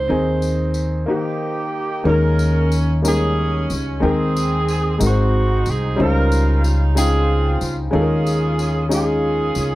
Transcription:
Already playing: G#2 C4 D#4 G#4 C5
0.08 D#2 D#3 C4 D#4 G#4
0.42 tambourine
0.74 tambourine
1.06 D#3 A#3 D#4 G4
1.10 A#3 D#4
2.04 D#2 D#3 G#3 A#3 C#4 D#4 A#4
2.09 C#4 A#4
2.39 tambourine
2.72 tambourine
3.02 G3 A#3 C#4 D#4 A#4, tambourine
3.07 G#3 C#4 G#4
3.70 C#2, tambourine
4.00 D#2 D#3 G#3 C4 D#4 G#4 A#4 G5
4.37 tambourine
4.68 tambourine
4.98 G#1 G#2 G#3 C4 D#4 F#4 A#4, tambourine
5.04 C4 D#4 F#4 C5
5.66 C2 G#4, tambourine
5.96 C#2 C#3 G3 C#4 D#4 E4 C5
6.01 D#4 F4 A#4
6.06 F4
6.32 tambourine
6.64 tambourine
6.95 C#3 G#3 D#4 F4 G#4 G5, tambourine
7.00 C4
7.61 C#2, tambourine
7.91 D#2 D#3 G#3 C#4 D#4 F4 A4
7.95 C#4 G#4
8.01 A#4
8.27 tambourine
8.59 tambourine
8.89 G#3 C#4 D#4 F4 G#4, tambourine
8.94 C#4 F4 G#4
9.55 C#2, tambourine

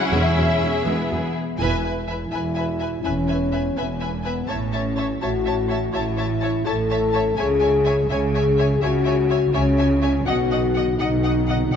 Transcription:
Already playing: F#3 C#4 E4 G#4 F#5
0.09 E1 E2 E3 G#3 G#4 E5
0.36 E1 E2 F#3
0.60 E1 E2 G#3
0.83 E1 E2 G#3 B3
1.10 E1 E2 F#3
1.58 E1 E2 E4 B4 E5 G#5
1.84 B4 E5 G#5
2.08 B4 E5 G#5
2.31 E1 E2 B4 E5 G#5
2.55 B4 E5 G#5
2.79 B4 E5 G#5
3.04 E1 E2 C#4 B4 E5 G#5
3.28 B4 E5 G#5
3.52 B4 E5 G#5
3.76 E1 E2 B3 B4 E5 G#5
4.00 B4 E5 G#5
4.24 B3 B4 E5 G#5
4.48 A1 A2 C#4 C#5 E5 A5
4.73 C#5 E5 A5
4.96 C#5 E5 A5
5.22 A1 A2 F#4 C#5 E5 A5
5.45 C#5 E5 A5
5.68 C#5 E5 A5
5.92 A1 A2 E4 C#5 E5 A5
6.17 C#5 E5 A5
6.41 C#5 E5 A5
6.65 A1 A2 A4 C#5 E5 A5
6.90 C#5 E5 A5
7.13 C#5 E5 A5
7.37 C#2 C#3 G#4 C#5 E5 G#5
7.61 C#5 E5 G#5
7.85 C#5 E5 G#5
8.09 C#2 C#3 G#4 C#5 E5 G#5
8.35 C#5 E5 G#5
8.57 C#5 E5 G#5
8.81 C#2 C#3 F#4 C#5 E5 G#5
9.05 C#5 E5 G#5
9.29 C#5 E5 G#5
9.53 C#2 C#3 C#4 C#5 E5 G#5
9.78 C#5 E5 G#5
10.02 C#5 E5 G#5
10.26 B1 B2 F#4 D#5 F#5
10.36 B2
10.43 B2
10.50 B2 D#5 F#5
10.59 B2
10.66 B2
10.73 B2 F#5
10.77 B2 D#5
10.88 B2
10.96 B1 B2 D#4 F#5
11.01 B2 D#5
11.10 B2
11.17 B2
11.23 B2 D#5 F#5
11.32 B2
11.41 B2
11.47 B2 D#5 F#5
11.56 B2
11.63 B2
11.71 B2 F#5

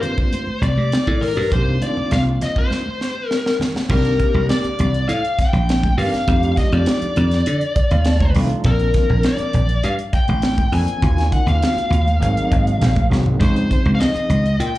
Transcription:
Already playing: G2 D#3 A#3 C4 D4 F4
0.02 C5, closed hi-hat, low conga
0.18 kick
0.32 closed hi-hat, high conga
0.47 high conga
0.61 C2 D5, closed hi-hat
0.77 C3, high conga
0.92 snare, closed hi-hat
1.07 A2, kick
1.21 A#4, open hi-hat, low conga
1.37 G2, high conga
1.52 C2 D#3 A#3 C4 D4 G4 C5, kick, closed hi-hat
1.81 D#3 A#3 C4 D4 F4 D5, closed hi-hat, high conga
1.97 low conga
2.11 C2 F5, snare, closed hi-hat
2.41 D#5, snare, closed hi-hat, low conga
2.56 C5, kick
2.70 snare, high conga
2.86 high conga
3.01 snare
3.27 A#4, snare
3.46 snare
3.60 snare, low conga
3.75 snare, high conga
3.89 C2 D#3 A#3 C4 D4 G4 A#4, kick, crash, low conga
4.05 closed hi-hat
4.19 kick, closed hi-hat, low conga
4.34 C2
4.49 D5, snare, closed hi-hat
4.64 muted slap bass stroke, closed hi-hat
4.79 C2, closed hi-hat, low conga
4.94 closed hi-hat
5.09 A2 F5, closed hi-hat
5.25 closed hi-hat
5.39 G5, muted slap bass stroke, kick, snare, closed hi-hat
5.53 A#1, closed hi-hat, high conga
5.69 snare, closed hi-hat
5.83 kick, closed hi-hat, high conga
5.98 G2 D#3 A#3 C4 D4 G4 F5, open hi-hat, low conga
6.13 muted slap bass stroke, snare, closed hi-hat
6.27 F2 F3 A3 D4 D#4 G4, kick, closed hi-hat, low conga
6.43 closed hi-hat
6.56 D#5, kick, snare, closed hi-hat, low conga
6.72 F2 D5, closed hi-hat
6.86 snare, closed hi-hat
7.02 muted slap bass stroke, closed hi-hat
7.16 F2, closed hi-hat, low conga
7.31 snare, closed hi-hat
7.46 D3, closed hi-hat
7.61 closed hi-hat
7.76 D5, muted slap bass stroke, kick, closed hi-hat
7.91 D#2 F5, closed hi-hat, high conga
8.05 A5, snare, closed hi-hat
8.20 A#5, kick, closed hi-hat, high conga
8.35 C2 F3 A3 D4 D#4 F4, open hi-hat, low conga
8.49 muted slap bass stroke, closed hi-hat
8.64 A#1 F3 A#3 C4 D4 A#4, kick, closed hi-hat, low conga
8.79 closed hi-hat
8.94 kick, snare, closed hi-hat, low conga
9.09 A#1
9.23 D5, snare, closed hi-hat
9.38 muted slap bass stroke, closed hi-hat
9.53 A#1, closed hi-hat, low conga
9.69 closed hi-hat
9.83 G2 F5, closed hi-hat
9.99 closed hi-hat
10.13 G5, muted slap bass stroke, kick, closed hi-hat
10.28 A1, closed hi-hat, high conga
10.42 snare, closed hi-hat
10.58 kick, closed hi-hat, high conga
10.72 F2 F3 A#3 C4 D4 A4 G#5, open hi-hat, low conga
10.88 muted slap bass stroke, closed hi-hat
11.02 D#2 A#3 C#4 D#4 F4 F#4, kick, closed hi-hat, low conga
11.18 snare, closed hi-hat
11.32 F#5, kick, closed hi-hat, low conga
11.47 D#2 F5, closed hi-hat
11.62 snare, closed hi-hat
11.76 muted slap bass stroke, closed hi-hat
11.90 D#2, closed hi-hat, low conga
12.06 closed hi-hat, high conga
12.20 G#1 F#3 A#3 C4 D#4 G#4, closed hi-hat
12.37 closed hi-hat
12.50 G#1 D#5, kick, closed hi-hat, high conga
12.67 closed hi-hat
12.81 A#1 F5, snare, closed hi-hat
12.95 kick, closed hi-hat, high conga
13.10 C2 F#3 A#3 C4 D#4 G#4 F#5, snare, low conga
13.26 floor tom
13.40 C#2 F3 C4 C#4 D#4 G#4 C5, kick, closed hi-hat, low conga
13.56 closed hi-hat
13.71 kick, closed hi-hat, low conga
13.85 C#2
13.95 F5
14.00 D#5, snare, closed hi-hat
14.15 muted slap bass stroke, closed hi-hat
14.29 C#2, closed hi-hat, low conga
14.46 closed hi-hat
14.60 A#2 G5, closed hi-hat

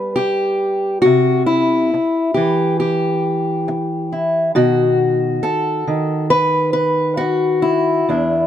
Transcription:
Already playing: G3 B3 D4 B4
0.16 G4, muted steel-string acoustic guitar stroke
1.02 C3 F#4
1.46 E4
1.94 muted steel-string acoustic guitar stroke
2.34 E3 G4
2.80 G4
3.68 muted steel-string acoustic guitar stroke
4.12 E4
4.55 B2 D#3 F#4
5.43 A4, muted steel-string acoustic guitar stroke
5.87 D#3
6.30 B4
6.73 B4
7.17 F#4, muted steel-string acoustic guitar stroke
7.62 E4
8.09 E2 D4

